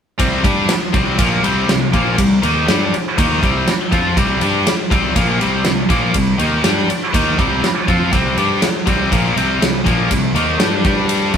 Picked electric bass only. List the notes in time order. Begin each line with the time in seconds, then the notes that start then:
0.20 C2
0.44 G2
0.69 muted picked electric bass stroke
0.94 C2
1.19 A#1
1.42 C2
1.68 C2
1.94 A#1
2.18 C2
2.43 D#2
2.69 G2
2.93 muted picked electric bass stroke
3.18 D#2
3.43 C2
3.69 muted picked electric bass stroke
3.92 F2
4.17 C2
4.42 G2
4.67 muted picked electric bass stroke
4.91 C2
5.15 A#1
5.41 C2
5.67 C2
5.89 A#1
6.15 C2
6.40 D#2
6.64 G2
6.89 muted picked electric bass stroke
7.14 D#2
7.38 C2
7.62 muted picked electric bass stroke
7.88 F2
8.13 C2
8.37 G2
8.62 muted picked electric bass stroke
8.87 C2
9.12 A#1
9.35 C2
9.60 C2
9.86 A#1
10.11 C2
10.34 D#2
10.59 G2
10.85 G2